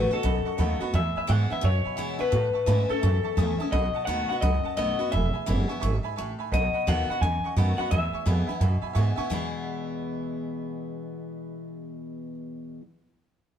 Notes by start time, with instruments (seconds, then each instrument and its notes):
Already playing: upright bass A1, steel-string acoustic guitar B2 D#3 A3 B3, clean electric guitar B4
0.11 steel-string acoustic guitar B3 F#4, clean electric guitar A4, honky-tonk piano D#5 F#5 C#6, muted upright bass stroke
0.23 upright bass B1, steel-string acoustic guitar F#2, honky-tonk piano D#5 F#5 B5
0.45 honky-tonk piano D#5 F#5 C#6, muted upright bass stroke
0.57 upright bass D#2, steel-string acoustic guitar D#3 A3 B3 F#4, honky-tonk piano D#5 F#5 B5
0.80 steel-string acoustic guitar B3 F#4, honky-tonk piano D#5 F#5 B5, muted upright bass stroke
0.93 upright bass E2, steel-string acoustic guitar E2, honky-tonk piano E5 G#5 B5, clean electric guitar E5
1.16 honky-tonk piano E5 G#5 B5, clean electric guitar E5, muted upright bass stroke
1.27 upright bass G#2, steel-string acoustic guitar E3 G#3 B3 E4, honky-tonk piano E5 G#5 C#6, clean electric guitar F#5
1.50 steel-string acoustic guitar B3 E4, honky-tonk piano E5 G#5 B5, clean electric guitar E5, muted upright bass stroke
1.61 upright bass F#2, steel-string acoustic guitar B2, clean electric guitar C#5, honky-tonk piano E5 G#5 C#6
1.85 honky-tonk piano E5 G#5 B5, muted upright bass stroke
1.96 upright bass E2, steel-string acoustic guitar E3 G#3 B3 E4, honky-tonk piano E5 G#5 B5
2.18 steel-string acoustic guitar B3 E4, clean electric guitar B4, honky-tonk piano E5 G#5 C#6, muted upright bass stroke
2.30 steel-string acoustic guitar A2, upright bass A2, honky-tonk piano E5 A5 C#6
2.53 honky-tonk piano E5 A5 C#6, muted upright bass stroke
2.66 upright bass G#2, steel-string acoustic guitar E3 A3 C#4 E4, honky-tonk piano E5 A5 B5
2.89 steel-string acoustic guitar C#4 E4, clean electric guitar A4, honky-tonk piano E5 A5 E6, muted upright bass stroke
3.01 steel-string acoustic guitar E2, upright bass F#2, honky-tonk piano E5 A5 C#6
3.23 honky-tonk piano E5 A5 C#6, muted upright bass stroke
3.36 upright bass E2, steel-string acoustic guitar E3 A3 C#4 E4, honky-tonk piano E5 A5 D#6
3.58 steel-string acoustic guitar C#4 E4, honky-tonk piano E5 A5 D#6, muted upright bass stroke
3.71 upright bass B1, steel-string acoustic guitar B2, honky-tonk piano D#5 F#5 B5, clean electric guitar D#5
3.94 honky-tonk piano D#5 F#5 A5, muted upright bass stroke
4.05 upright bass D#2, steel-string acoustic guitar D#3 A3 B3 F#4, honky-tonk piano D#5 F#5 B5, clean electric guitar F#5
4.29 steel-string acoustic guitar B3 F#4, honky-tonk piano D#5 F#5 B5, clean electric guitar F#5, muted upright bass stroke
4.41 upright bass C#2, steel-string acoustic guitar F#2, honky-tonk piano D#5 F#5 B5, clean electric guitar D#5
4.63 honky-tonk piano D#5 F#5 A5, muted upright bass stroke
4.76 upright bass B1, steel-string acoustic guitar D#3 A3 B3 F#4, honky-tonk piano D#5 F#5 B5, clean electric guitar D#5
4.99 steel-string acoustic guitar B3 F#4, honky-tonk piano D#5 F#5 B5, muted upright bass stroke
5.11 upright bass E1, steel-string acoustic guitar E2, honky-tonk piano E5 G#5 B5, clean electric guitar E5
5.33 honky-tonk piano E5 G#5 B5, muted upright bass stroke
5.46 upright bass F#1, steel-string acoustic guitar E3 G#3 B3 E4, honky-tonk piano E5 G#5 B5
5.68 steel-string acoustic guitar B3 E4, honky-tonk piano E5 G#5 C#6
5.80 upright bass G#1, steel-string acoustic guitar G#2, honky-tonk piano E5 G#5 C#6
6.03 honky-tonk piano E5 G#5 B5, muted upright bass stroke
6.16 upright bass A1, steel-string acoustic guitar A2, honky-tonk piano E5 G#5 C#6
6.39 honky-tonk piano E5 G#5 B5, muted upright bass stroke
6.52 upright bass B1, steel-string acoustic guitar B2, honky-tonk piano D#5 F#5 B5, clean electric guitar D#5
6.73 honky-tonk piano D#5 F#5 B5, muted upright bass stroke
6.86 upright bass D#2, steel-string acoustic guitar D#3 A3 B3 F#4, honky-tonk piano D#5 F#5 G#5, clean electric guitar F#5
7.08 steel-string acoustic guitar B3 F#4, honky-tonk piano D#5 F#5 B5, clean electric guitar F#5, muted upright bass stroke
7.21 upright bass E2, steel-string acoustic guitar F#2, honky-tonk piano D#5 F#5 B5, clean electric guitar G#5
7.44 honky-tonk piano D#5 F#5 C#6, muted upright bass stroke
7.56 upright bass F#2, steel-string acoustic guitar D#3 A3 B3 F#4, honky-tonk piano D#5 F#5 B5
7.78 steel-string acoustic guitar B3 F#4, honky-tonk piano D#5 F#5 B5, clean electric guitar F#5, muted upright bass stroke
7.91 steel-string acoustic guitar E2, upright bass E2, clean electric guitar E5, honky-tonk piano E5 G#5 B5
8.13 honky-tonk piano E5 G#5 C#6, muted upright bass stroke
8.25 upright bass F2, steel-string acoustic guitar E3 G#3 B3 E4, honky-tonk piano E5 G#5 B5
8.47 steel-string acoustic guitar B3 E4, honky-tonk piano E5 G#5 B5, muted upright bass stroke
8.58 upright bass F#2, steel-string acoustic guitar B2, clean electric guitar D#5, honky-tonk piano E5 G#5 B5
8.82 honky-tonk piano E5 G#5 B5, muted upright bass stroke
8.93 upright bass G#2, steel-string acoustic guitar E3 G#3 B3 E4, honky-tonk piano E5 G#5 C#6
9.16 steel-string acoustic guitar B3 E4, honky-tonk piano E5 G#5 C#6, muted upright bass stroke
9.27 steel-string acoustic guitar E2 B2 E3, upright bass E2, honky-tonk piano E5 G#5
9.31 steel-string acoustic guitar G#3 B3 E4, honky-tonk piano B5